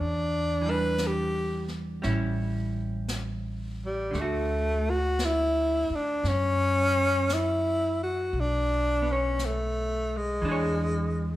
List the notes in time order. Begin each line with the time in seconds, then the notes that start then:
Already playing: E2
0.00 D4
0.61 E3
0.66 G3 D4
0.70 B4
0.98 brush sweep, snare, hi-hat pedal
1.07 G4
1.68 snare
2.02 A1 G3 C#4 E4, brush sweep, snare
3.08 brush sweep, snare, hi-hat pedal
3.86 G3
4.11 D2 D3, brush sweep, snare
4.15 A3
4.20 A3 F#4
4.90 F#4
5.19 brush sweep, snare, hi-hat pedal
5.25 E4
5.90 muted upright bass stroke
5.95 D4
6.23 F#2, brush sweep, snare
6.28 C#4
7.29 brush sweep, snare, hi-hat pedal
7.34 E4
8.03 F#4
8.33 B1, brush sweep
8.40 D4
9.02 B3
9.11 C#4 C#5
9.39 brush sweep, snare, hi-hat pedal
9.45 A3
10.17 G#3
10.42 E2 E3 D4, brush sweep
10.49 G#4 C#5